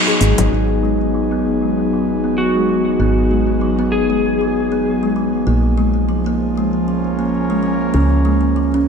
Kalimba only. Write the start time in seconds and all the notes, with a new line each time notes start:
0.08 G#4
0.21 G#3
0.38 D#4
0.51 B3
0.83 G#3
1.14 F#3
1.31 B3
1.62 G#3
1.93 F#3
2.24 B3
2.55 G#3
2.69 F#3
3.00 B3
3.31 G#3
3.61 F#3
3.79 B3
4.10 G#3
4.41 F#3
4.72 B3
5.03 G#3
5.16 F#3
5.47 A#3
5.78 G#3
6.09 F3
6.26 A#3
6.58 G#3
6.88 F3
7.19 A#3
7.50 G#3
7.63 F3
7.94 C#4
8.25 G#3
8.56 F3
8.74 C#4